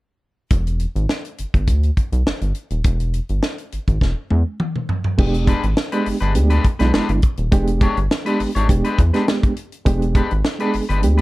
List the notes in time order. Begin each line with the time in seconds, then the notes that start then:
0.50 E1, kick, closed hi-hat
0.67 closed hi-hat
0.80 closed hi-hat
0.96 G#1, closed hi-hat
1.09 snare
1.25 closed hi-hat
1.38 G1, closed hi-hat
1.54 G1, kick, closed hi-hat
1.67 D2, kick, closed hi-hat
1.83 closed hi-hat
1.97 kick, closed hi-hat
2.12 B1, closed hi-hat
2.26 G1, snare
2.41 G1, closed hi-hat
2.55 closed hi-hat
2.70 D#1, closed hi-hat
2.84 E1, kick, closed hi-hat
3.00 closed hi-hat
3.14 closed hi-hat
3.29 G1, closed hi-hat
3.43 snare
3.58 closed hi-hat
3.72 G#1, closed hi-hat
3.88 G#1, kick, closed hi-hat
4.01 E1, kick, snare
4.30 E2, high tom
4.60 mid tom
4.76 mid tom
4.89 floor tom
5.04 floor tom
5.18 E1 G#3 B3 D4 G4, kick, crash
5.34 closed hi-hat
5.47 G#3 D4 G4 B4, kick, closed hi-hat
5.63 G#1, closed hi-hat
5.77 snare
5.92 G#3 B3 D4 G4 B4, closed hi-hat
6.06 G1, open hi-hat
6.21 G1 G#3 D4 G4 B4, closed hi-hat
6.35 D2 G#3 B3 D4 G4, closed hi-hat
6.50 G#3 D4 G4 B4, closed hi-hat
6.64 kick, closed hi-hat
6.79 B1 G#3 B3 D4 E4 G4 B4, snare, closed hi-hat
6.93 G1 G#3 D4 G4 B4, snare
7.09 G1, closed hi-hat
7.22 kick, closed hi-hat
7.37 D#1, closed hi-hat
7.52 E1 G#3 B3 D4 G4, kick, closed hi-hat
7.67 closed hi-hat
7.81 G#3 D4 G4 C#5, kick, closed hi-hat
7.97 G1, closed hi-hat
8.11 snare
8.25 G#3 B3 D4 G4 B4, closed hi-hat
8.40 G#1, open hi-hat
8.55 G#1 G#3 D4 G4 C#5, closed hi-hat
8.68 E1 G#3 B3 D4 G4, kick, closed hi-hat
8.85 G#3 D4 G4 B4, closed hi-hat
8.99 E2, kick, closed hi-hat
9.12 G#3 B3 D4 G4 B4, snare, closed hi-hat
9.28 snare
9.43 kick, closed hi-hat
9.57 closed hi-hat
9.72 closed hi-hat
9.85 E1 G#3 B3 D4 G4, kick, closed hi-hat
10.02 closed hi-hat
10.15 G#3 D4 G4 B4, kick, closed hi-hat
10.31 G#1, closed hi-hat
10.45 snare
10.59 G#3 B3 D4 G4 G#4 B4, closed hi-hat
10.74 G1, open hi-hat
10.89 G1 G#3 D4 G4 B4, closed hi-hat
11.02 D2 G#3 B3 D4 G4, closed hi-hat
11.18 B4